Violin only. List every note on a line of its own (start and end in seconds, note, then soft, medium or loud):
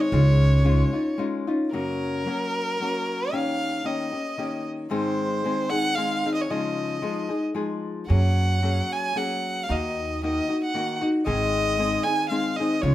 0.01 1.19 C#5 medium
1.73 3.35 A#4 medium
3.34 3.87 F5 medium
3.86 4.65 D#5 medium
4.92 5.71 C5 medium
5.70 5.96 F#5 medium
5.95 6.34 F5 medium
6.34 6.43 D#5 medium
6.42 6.53 C#5 medium
6.51 7.43 D#5 medium
8.09 8.94 F#5 medium
8.92 9.19 G#5 medium
9.17 9.65 F#5 medium
9.63 9.73 F5 medium
9.72 10.24 D#5 medium
10.24 10.60 D#5 medium
10.64 11.00 F#5 medium
11.27 12.05 D#5 medium
12.03 12.29 G#5 medium
12.29 12.58 F5 medium
12.56 12.83 D#5 medium
12.82 12.95 C#5 medium